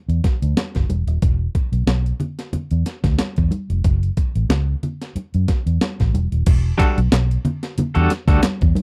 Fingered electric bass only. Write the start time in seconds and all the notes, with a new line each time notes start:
0.09 E2
0.42 D2
0.76 G1
0.89 E1
1.07 D#1
1.22 E1
1.72 B1
1.87 B1
2.54 muted fingered electric bass stroke
2.71 E2
3.04 D2
3.38 E2
3.70 F1
3.85 F#1
4.35 A1
4.49 C#2
5.15 muted fingered electric bass stroke
5.35 F#2
5.66 E2
6.00 A1
6.13 E1
6.32 D#1
6.47 E1
6.98 B1
7.12 B1
7.78 muted fingered electric bass stroke
7.96 E2
8.28 D2
8.62 E2